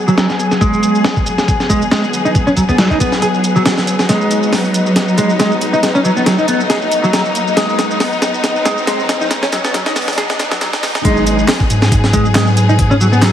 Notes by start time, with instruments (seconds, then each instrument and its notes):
Already playing: string section F#3 B3 G#4, riser
0.08 clean electric guitar F#3, shaker
0.17 clean electric guitar F#3, snare, closed hi-hat, shaker
0.30 snare, shaker
0.39 closed hi-hat, shaker
0.51 snare, shaker
0.61 clean electric guitar G#3, kick, closed hi-hat, shaker
0.73 shaker
0.83 closed hi-hat, shaker
0.95 shaker
1.04 snare, open hi-hat, shaker
1.17 kick, shaker
1.26 closed hi-hat, shaker
1.38 snare, shaker
1.48 kick, closed hi-hat, shaker
1.60 snare, shaker
1.70 clean electric guitar G#3, kick, closed hi-hat, shaker
1.82 shaker
1.91 clean electric guitar G#3, snare, closed hi-hat, shaker
2.04 shaker
2.13 closed hi-hat, shaker
2.25 clean electric guitar D#4, shaker
2.35 kick, closed hi-hat, shaker
2.47 clean electric guitar C#4, shaker
2.57 clean electric guitar F#3, kick, closed hi-hat, shaker
2.69 clean electric guitar B3, kick, shaker
2.78 clean electric guitar F#3, snare, closed hi-hat, shaker
2.91 clean electric guitar D#4, kick, shaker
3.00 clean electric guitar B3, kick, closed hi-hat, shaker
3.12 snare, shaker
3.22 clean electric guitar G#4, closed hi-hat, shaker
3.34 shaker
3.44 closed hi-hat, shaker
3.56 clean electric guitar F#3, shaker
3.66 clean electric guitar F#3, snare, closed hi-hat, shaker
3.77 snare, shaker
3.87 closed hi-hat, shaker
3.99 snare, shaker
4.09 clean electric guitar G#3, string section D#4, snare, closed hi-hat, shaker
4.21 shaker
4.31 closed hi-hat, shaker
4.43 shaker
4.53 snare, open hi-hat, shaker
4.65 shaker
4.74 closed hi-hat, shaker
4.86 shaker
4.96 snare, closed hi-hat, shaker
5.08 shaker
5.18 clean electric guitar G#3, closed hi-hat, shaker
5.30 shaker
5.39 clean electric guitar G#3, snare, closed hi-hat, shaker
5.52 shaker
5.61 closed hi-hat, shaker
5.73 clean electric guitar D#4, shaker
5.83 snare, closed hi-hat, shaker
5.95 clean electric guitar C#4, shaker
6.05 clean electric guitar F#3, shaker
6.17 clean electric guitar B3, shaker
6.26 clean electric guitar F#3, snare, closed hi-hat, shaker
6.38 clean electric guitar D#4, shaker
6.48 clean electric guitar B3, closed hi-hat, shaker
6.60 shaker
6.70 clean electric guitar G#4, snare, closed hi-hat, shaker
6.82 shaker
6.92 closed hi-hat, shaker
7.04 clean electric guitar F#3, shaker
7.13 clean electric guitar F#3, snare, closed hi-hat, shaker
7.26 shaker
7.35 closed hi-hat, shaker
7.47 shaker
7.57 clean electric guitar G#3, snare, closed hi-hat, shaker
7.69 shaker
7.79 snare, closed hi-hat, shaker
7.91 shaker
8.00 snare, open hi-hat, shaker
8.13 shaker
8.22 snare, closed hi-hat, shaker
8.34 shaker
8.44 snare, closed hi-hat, shaker
8.56 shaker
8.65 clean electric guitar G#3, snare, closed hi-hat, shaker
8.78 shaker
8.87 clean electric guitar G#3, snare, closed hi-hat, shaker
9.00 shaker
9.09 snare, closed hi-hat, shaker
9.21 clean electric guitar D#4, shaker
9.31 snare, closed hi-hat, shaker
9.43 clean electric guitar C#4, snare, shaker
9.52 clean electric guitar F#3, snare, closed hi-hat, shaker
9.64 clean electric guitar B3, snare, shaker
9.74 clean electric guitar F#3, snare, closed hi-hat, shaker
9.86 clean electric guitar D#4, snare, shaker
9.96 clean electric guitar B3, snare, open hi-hat, shaker
10.02 open hi-hat
10.08 snare, open hi-hat, shaker
10.13 open hi-hat
10.18 clean electric guitar G#4, snare, closed hi-hat, shaker
10.29 snare, shaker
10.39 snare, closed hi-hat, shaker
10.51 clean electric guitar F#3, snare, shaker
10.61 clean electric guitar F#3, snare, closed hi-hat, shaker
10.73 snare, shaker
10.83 snare, open hi-hat, shaker
10.95 snare, shaker
11.05 sub bass G#1, string section F#3 B3 G#4, clean electric guitar G#3, kick, closed hi-hat, shaker
11.17 shaker
11.27 closed hi-hat, shaker
11.39 shaker
11.48 snare, clap, open hi-hat, shaker
11.60 kick, shaker
11.70 sub bass G#2, closed hi-hat, shaker
11.82 snare, shaker
11.92 kick, closed hi-hat, shaker
12.04 snare, shaker
12.13 clean electric guitar G#3, kick, closed hi-hat, shaker
12.25 shaker
12.35 clean electric guitar G#3, snare, clap, closed hi-hat, shaker
12.47 shaker
12.57 closed hi-hat, shaker
12.69 clean electric guitar D#4, shaker
12.79 kick, closed hi-hat, shaker
12.91 clean electric guitar C#4, shaker
13.01 clean electric guitar F#3, shaker
13.12 clean electric guitar B3, shaker
13.22 clean electric guitar F#3, snare, clap, closed hi-hat, shaker